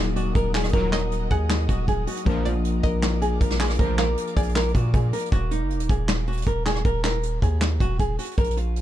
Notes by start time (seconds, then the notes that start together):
Already playing: D#1 F#3 A#3 D#4 F#4 G#4 A#4 D#5 F#5 D#6
0.16 F#4, closed hi-hat
0.35 D#1 A#4, kick, closed hi-hat
0.54 G#4, snare, clap
0.59 closed hi-hat
0.64 cross-stick, closed hi-hat
0.69 closed hi-hat
0.73 D#1 D#2 A#2 F#3 A#4, kick, closed hi-hat
0.92 A#4 D#5, snare, clap
1.12 closed hi-hat
1.31 D#2 G#4 F#5, kick, closed hi-hat
1.50 snare, clap
1.69 D#1 F#4, kick, closed hi-hat
1.88 D#1 G#4, kick, closed hi-hat
2.07 F#4, closed hi-hat, open hi-hat
2.17 closed hi-hat
2.25 A#1 D2 A#2 F3 A#3 D4 F4 A#4 D5 F5 D6, kick, closed hi-hat
2.45 F4 D5, closed hi-hat
2.65 closed hi-hat
2.83 A#1 A#4 D#5, kick, closed hi-hat
3.03 snare, clap
3.22 G#4, closed hi-hat
3.41 A#1 A#4, kick, closed hi-hat
3.51 snare
3.60 G#4, snare, clap
3.65 closed hi-hat
3.70 cross-stick, closed hi-hat
3.74 closed hi-hat
3.79 A#1 D2 A#2 F3 A#4, kick, closed hi-hat
3.98 A#4 F5, snare, clap
4.17 closed hi-hat
4.27 closed hi-hat
4.37 A#1 G#4 D5, kick, closed hi-hat
4.43 closed hi-hat
4.49 closed hi-hat
4.56 A#4, snare, clap
4.62 closed hi-hat
4.68 closed hi-hat
4.75 A#2 F#4, kick, closed hi-hat
4.94 A#2 G#4, kick, closed hi-hat
5.13 A#4, closed hi-hat, open hi-hat
5.19 closed hi-hat
5.26 closed hi-hat
5.32 D#1 F#4, kick, closed hi-hat
5.51 D#4, closed hi-hat
5.61 F#1
5.70 closed hi-hat
5.75 D#1
5.80 closed hi-hat
5.89 D#1 G#4, kick, closed hi-hat
6.08 snare, clap
6.28 F#4, closed hi-hat
6.32 closed hi-hat
6.37 closed hi-hat
6.42 closed hi-hat
6.47 D#1 A#4, kick, closed hi-hat
6.66 G#4, snare, clap
6.75 cross-stick
6.85 D#1 A#4, kick, closed hi-hat
7.04 A#4, snare, clap
7.23 closed hi-hat
7.42 D#2 G#4, kick, closed hi-hat
7.61 snare, clap
7.80 D#1 F#4, kick, closed hi-hat
7.99 D#1 G#4, kick, closed hi-hat
8.19 F#4, closed hi-hat, open hi-hat
8.25 closed hi-hat
8.31 closed hi-hat
8.38 A#1 A#4, kick, closed hi-hat
8.44 closed hi-hat
8.51 closed hi-hat
8.57 F4, closed hi-hat
8.76 closed hi-hat